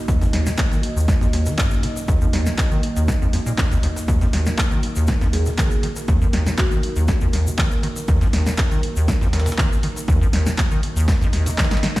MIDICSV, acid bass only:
0, 0, Header, 1, 2, 480
1, 0, Start_track
1, 0, Key_signature, -6, "minor"
1, 0, Tempo, 500000
1, 79, Time_signature, 4, 2, 24, 8
1, 11520, End_track
2, 0, Start_track
2, 0, Title_t, "Acid bass"
2, 0, Program_c, 0, 38
2, 78, Note_on_c, 0, 39, 103
2, 183, Note_off_c, 0, 39, 0
2, 204, Note_on_c, 0, 41, 104
2, 267, Note_off_c, 0, 41, 0
2, 319, Note_on_c, 0, 39, 80
2, 445, Note_on_c, 0, 51, 78
2, 460, Note_off_c, 0, 39, 0
2, 483, Note_off_c, 0, 51, 0
2, 686, Note_on_c, 0, 51, 78
2, 779, Note_off_c, 0, 51, 0
2, 925, Note_on_c, 0, 39, 100
2, 1039, Note_on_c, 0, 42, 82
2, 1054, Note_off_c, 0, 39, 0
2, 1109, Note_off_c, 0, 42, 0
2, 1164, Note_on_c, 0, 41, 102
2, 1227, Note_off_c, 0, 41, 0
2, 1279, Note_on_c, 0, 39, 75
2, 1405, Note_on_c, 0, 51, 83
2, 1419, Note_off_c, 0, 39, 0
2, 1520, Note_on_c, 0, 42, 86
2, 1534, Note_off_c, 0, 51, 0
2, 1759, Note_on_c, 0, 51, 74
2, 1774, Note_off_c, 0, 42, 0
2, 1801, Note_off_c, 0, 51, 0
2, 1999, Note_on_c, 0, 39, 104
2, 2104, Note_off_c, 0, 39, 0
2, 2126, Note_on_c, 0, 41, 99
2, 2188, Note_off_c, 0, 41, 0
2, 2239, Note_on_c, 0, 39, 83
2, 2366, Note_on_c, 0, 51, 74
2, 2381, Note_off_c, 0, 39, 0
2, 2403, Note_off_c, 0, 51, 0
2, 2606, Note_on_c, 0, 51, 77
2, 2699, Note_off_c, 0, 51, 0
2, 2846, Note_on_c, 0, 39, 98
2, 2958, Note_on_c, 0, 42, 83
2, 2973, Note_off_c, 0, 39, 0
2, 3028, Note_off_c, 0, 42, 0
2, 3087, Note_on_c, 0, 41, 103
2, 3149, Note_off_c, 0, 41, 0
2, 3199, Note_on_c, 0, 41, 70
2, 3269, Note_off_c, 0, 41, 0
2, 3325, Note_on_c, 0, 46, 109
2, 3388, Note_off_c, 0, 46, 0
2, 3439, Note_on_c, 0, 42, 104
2, 3509, Note_off_c, 0, 42, 0
2, 3565, Note_on_c, 0, 39, 102
2, 3628, Note_off_c, 0, 39, 0
2, 3678, Note_on_c, 0, 39, 95
2, 3720, Note_off_c, 0, 39, 0
2, 3919, Note_on_c, 0, 39, 109
2, 4024, Note_off_c, 0, 39, 0
2, 4046, Note_on_c, 0, 41, 101
2, 4108, Note_off_c, 0, 41, 0
2, 4159, Note_on_c, 0, 39, 78
2, 4285, Note_on_c, 0, 51, 81
2, 4299, Note_off_c, 0, 39, 0
2, 4323, Note_off_c, 0, 51, 0
2, 4525, Note_on_c, 0, 51, 79
2, 4619, Note_off_c, 0, 51, 0
2, 4766, Note_on_c, 0, 39, 97
2, 4880, Note_on_c, 0, 42, 82
2, 4895, Note_off_c, 0, 39, 0
2, 4949, Note_off_c, 0, 42, 0
2, 5006, Note_on_c, 0, 41, 99
2, 5068, Note_off_c, 0, 41, 0
2, 5120, Note_on_c, 0, 39, 70
2, 5247, Note_on_c, 0, 51, 79
2, 5261, Note_off_c, 0, 39, 0
2, 5284, Note_off_c, 0, 51, 0
2, 5360, Note_on_c, 0, 51, 81
2, 5464, Note_off_c, 0, 51, 0
2, 5600, Note_on_c, 0, 51, 79
2, 5641, Note_off_c, 0, 51, 0
2, 5840, Note_on_c, 0, 39, 110
2, 5944, Note_off_c, 0, 39, 0
2, 5966, Note_on_c, 0, 41, 106
2, 6028, Note_off_c, 0, 41, 0
2, 6080, Note_on_c, 0, 39, 78
2, 6206, Note_on_c, 0, 51, 76
2, 6220, Note_off_c, 0, 39, 0
2, 6243, Note_off_c, 0, 51, 0
2, 6446, Note_on_c, 0, 51, 75
2, 6539, Note_off_c, 0, 51, 0
2, 6687, Note_on_c, 0, 39, 100
2, 6801, Note_on_c, 0, 42, 83
2, 6815, Note_off_c, 0, 39, 0
2, 6869, Note_off_c, 0, 42, 0
2, 6926, Note_on_c, 0, 41, 97
2, 6988, Note_off_c, 0, 41, 0
2, 7040, Note_on_c, 0, 39, 73
2, 7165, Note_on_c, 0, 51, 83
2, 7180, Note_off_c, 0, 39, 0
2, 7203, Note_off_c, 0, 51, 0
2, 7279, Note_on_c, 0, 51, 88
2, 7384, Note_off_c, 0, 51, 0
2, 7519, Note_on_c, 0, 51, 79
2, 7561, Note_off_c, 0, 51, 0
2, 7759, Note_on_c, 0, 39, 106
2, 7864, Note_off_c, 0, 39, 0
2, 7885, Note_on_c, 0, 41, 107
2, 7948, Note_off_c, 0, 41, 0
2, 8001, Note_on_c, 0, 39, 82
2, 8127, Note_on_c, 0, 51, 78
2, 8141, Note_off_c, 0, 39, 0
2, 8164, Note_off_c, 0, 51, 0
2, 8368, Note_on_c, 0, 51, 80
2, 8460, Note_off_c, 0, 51, 0
2, 8607, Note_on_c, 0, 39, 95
2, 8719, Note_on_c, 0, 42, 81
2, 8733, Note_off_c, 0, 39, 0
2, 8789, Note_off_c, 0, 42, 0
2, 8846, Note_on_c, 0, 41, 100
2, 8908, Note_off_c, 0, 41, 0
2, 8959, Note_on_c, 0, 39, 77
2, 9085, Note_on_c, 0, 51, 83
2, 9099, Note_off_c, 0, 39, 0
2, 9122, Note_off_c, 0, 51, 0
2, 9197, Note_on_c, 0, 51, 86
2, 9303, Note_off_c, 0, 51, 0
2, 9439, Note_on_c, 0, 51, 76
2, 9481, Note_off_c, 0, 51, 0
2, 9678, Note_on_c, 0, 39, 107
2, 9783, Note_off_c, 0, 39, 0
2, 9804, Note_on_c, 0, 41, 99
2, 9867, Note_off_c, 0, 41, 0
2, 9917, Note_on_c, 0, 39, 83
2, 10045, Note_on_c, 0, 51, 74
2, 10059, Note_off_c, 0, 39, 0
2, 10083, Note_off_c, 0, 51, 0
2, 10285, Note_on_c, 0, 51, 77
2, 10379, Note_off_c, 0, 51, 0
2, 10524, Note_on_c, 0, 39, 98
2, 10637, Note_on_c, 0, 42, 84
2, 10652, Note_off_c, 0, 39, 0
2, 10708, Note_off_c, 0, 42, 0
2, 10765, Note_on_c, 0, 41, 101
2, 10828, Note_off_c, 0, 41, 0
2, 10878, Note_on_c, 0, 39, 72
2, 11003, Note_on_c, 0, 51, 81
2, 11018, Note_off_c, 0, 39, 0
2, 11042, Note_off_c, 0, 51, 0
2, 11118, Note_on_c, 0, 51, 88
2, 11223, Note_off_c, 0, 51, 0
2, 11358, Note_on_c, 0, 51, 78
2, 11400, Note_off_c, 0, 51, 0
2, 11520, End_track
0, 0, End_of_file